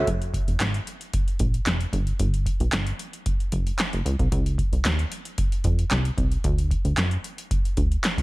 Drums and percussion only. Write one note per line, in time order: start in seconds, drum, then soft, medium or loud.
0.07 kick loud
0.07 closed hi-hat medium
0.22 closed hi-hat medium
0.34 kick medium
0.34 closed hi-hat medium
0.48 closed hi-hat soft
0.60 snare loud
0.60 clap medium
0.60 closed hi-hat medium
0.74 closed hi-hat medium
0.87 closed hi-hat medium
1.01 closed hi-hat medium
1.13 kick loud
1.13 closed hi-hat medium
1.28 closed hi-hat soft
1.39 kick loud
1.39 closed hi-hat medium
1.54 closed hi-hat soft
1.66 snare loud
1.66 clap medium
1.66 closed hi-hat medium
1.81 closed hi-hat soft
1.93 kick loud
1.93 closed hi-hat medium
2.07 closed hi-hat soft
2.19 kick loud
2.19 closed hi-hat medium
2.34 closed hi-hat medium
2.46 kick medium
2.46 closed hi-hat medium
2.60 closed hi-hat soft
2.72 snare loud
2.72 clap medium
2.72 closed hi-hat medium
2.87 closed hi-hat medium
2.99 closed hi-hat medium
3.13 closed hi-hat medium
3.26 kick loud
3.26 closed hi-hat medium
3.40 closed hi-hat soft
3.52 kick medium
3.52 closed hi-hat medium
3.67 closed hi-hat soft
3.79 snare loud
3.79 clap medium
3.79 closed hi-hat medium
3.93 closed hi-hat soft
4.06 closed hi-hat medium
4.19 kick medium
4.19 closed hi-hat soft
4.32 kick loud
4.32 closed hi-hat medium
4.46 closed hi-hat medium
4.58 kick medium
4.58 closed hi-hat medium
4.73 closed hi-hat soft
4.85 snare loud
4.85 clap medium
4.85 closed hi-hat medium
4.99 closed hi-hat medium
5.12 closed hi-hat medium
5.25 closed hi-hat medium
5.38 kick loud
5.38 closed hi-hat medium
5.52 closed hi-hat soft
5.64 kick medium
5.64 closed hi-hat medium
5.79 closed hi-hat soft
5.91 snare loud
5.91 clap medium
5.91 closed hi-hat medium
6.05 closed hi-hat soft
6.18 kick loud
6.18 closed hi-hat medium
6.32 closed hi-hat soft
6.44 kick loud
6.44 closed hi-hat medium
6.58 closed hi-hat medium
6.71 kick medium
6.71 closed hi-hat medium
6.85 closed hi-hat soft
6.97 snare loud
6.97 clap medium
6.97 closed hi-hat medium
7.11 closed hi-hat medium
7.24 closed hi-hat medium
7.38 closed hi-hat medium
7.51 kick loud
7.51 closed hi-hat medium
7.65 closed hi-hat soft
7.77 kick medium
7.77 closed hi-hat medium
7.92 closed hi-hat soft
8.04 snare loud
8.04 clap medium
8.04 closed hi-hat medium
8.18 closed hi-hat soft